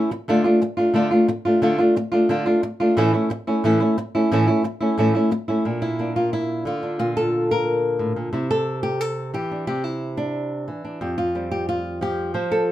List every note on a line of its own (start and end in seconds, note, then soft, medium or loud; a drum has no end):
0.00 0.11 A3 soft
0.00 0.11 C#4 soft
0.00 0.11 E4 soft
0.11 muted nylon-string guitar stroke medium
0.28 0.45 D3 medium
0.28 0.45 A3 medium
0.28 0.44 D4 medium
0.28 0.43 F4 medium
0.44 0.61 A3 soft
0.44 0.61 D4 soft
0.44 0.61 F4 soft
0.62 muted nylon-string guitar stroke medium
0.77 0.93 A3 soft
0.77 0.94 D4 soft
0.77 0.94 F4 soft
0.94 1.11 D3 medium
0.94 1.11 A3 medium
0.94 1.11 D4 medium
0.94 1.10 F4 medium
1.11 1.27 A3 soft
1.11 1.28 D4 soft
1.11 1.28 F4 soft
1.28 muted nylon-string guitar stroke medium
1.45 1.61 A3 soft
1.45 1.62 D4 soft
1.45 1.62 F4 medium
1.62 1.78 D3 medium
1.62 1.79 A3 medium
1.62 1.78 D4 medium
1.62 1.77 F4 medium
1.78 1.96 A3 soft
1.78 1.95 D4 soft
1.78 1.95 F4 medium
1.96 muted nylon-string guitar stroke medium
2.12 2.29 A3 soft
2.12 2.29 D4 soft
2.12 2.29 F4 medium
2.29 2.46 D3 medium
2.29 2.46 A3 medium
2.29 2.46 D4 medium
2.29 2.45 F4 medium
2.46 2.62 A3 soft
2.46 2.62 D4 soft
2.46 2.62 F4 medium
2.63 muted nylon-string guitar stroke medium
2.80 2.97 A3 soft
2.80 2.97 D4 soft
2.80 2.96 F4 soft
2.97 3.13 A2 medium
2.97 3.13 E3 medium
2.97 3.13 A3 medium
2.97 3.13 C#4 medium
2.97 3.12 E4 medium
3.13 3.30 A3 soft
3.13 3.30 C#4 soft
3.13 3.30 E4 medium
3.30 muted nylon-string guitar stroke medium
3.47 3.64 A3 soft
3.47 3.64 C#4 soft
3.47 3.63 E4 soft
3.64 3.80 A2 medium
3.64 3.80 E3 medium
3.64 3.81 A3 medium
3.64 3.80 C#4 medium
3.64 3.79 E4 medium
3.80 3.97 A3 soft
3.80 3.97 C#4 soft
3.80 3.97 E4 soft
3.98 muted nylon-string guitar stroke medium
4.15 4.31 A3 soft
4.15 4.31 C#4 soft
4.15 4.31 E4 medium
4.32 4.47 A2 medium
4.32 4.47 E3 medium
4.32 4.48 A3 medium
4.32 4.47 C#4 medium
4.32 4.46 E4 medium
4.47 4.64 A3 soft
4.47 4.64 C#4 soft
4.47 4.64 E4 soft
4.64 muted nylon-string guitar stroke medium
4.81 4.98 A3 soft
4.81 4.98 C#4 soft
4.81 4.97 E4 soft
4.98 5.14 A2 medium
4.98 5.14 E3 medium
4.98 5.14 A3 medium
4.98 5.14 C#4 medium
4.98 5.13 E4 medium
5.15 5.31 A3 soft
5.15 5.31 C#4 soft
5.15 5.31 E4 soft
5.31 muted nylon-string guitar stroke medium
5.48 5.65 A3 soft
5.48 5.65 C#4 soft
5.48 5.64 E4 soft
5.65 6.66 A#2 medium
5.65 5.99 D4 soft
5.82 6.15 E4 medium
5.99 6.97 A#3 soft
5.99 6.82 D4 soft
6.16 6.32 F4 medium
6.33 6.66 E4 medium
6.65 8.33 D3 medium
6.65 6.98 F4 medium
6.83 6.99 D4 soft
6.99 8.15 A#2 medium
6.99 7.50 F4 medium
7.17 7.50 A4 medium
7.51 8.33 A#4 medium
7.99 8.16 A2 soft
8.16 8.32 A#2 soft
8.33 9.33 C3 medium
8.33 8.50 E4 soft
8.51 8.83 A4 medium
8.83 9.01 G4 medium
9.01 9.34 A4 medium
9.34 9.65 E3 medium
9.34 9.66 G4 medium
9.51 9.65 D4 soft
9.67 10.68 C3 medium
9.67 9.84 G4 medium
9.84 10.51 E4 medium
10.17 10.83 D4 medium
10.68 10.99 E3 soft
10.85 10.99 D4 soft
11.01 12.33 F2 medium
11.01 11.17 G4 soft
11.18 11.51 F4 medium
11.35 12.72 G3 soft
11.35 12.33 C4 soft
11.51 11.68 G4 medium
11.69 12.02 F4 medium
12.01 12.34 F3 soft
12.01 12.34 G4 medium
12.34 12.72 F3 medium
12.34 12.72 C5 soft
12.52 12.72 A4 medium